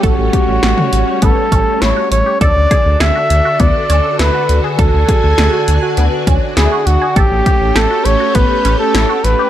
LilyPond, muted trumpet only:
\new Staff \with { instrumentName = "Muted trumpet" } { \time 4/4 \key d \lydian \tempo 4 = 101 fis'2 a'4 cis''8 cis''8 | d''4 e''4 d''4 b'4 | a'2~ a'8 r8 gis'8 fis'8 | g'4 a'8 cis''8 b'8. a'8. b'8 | }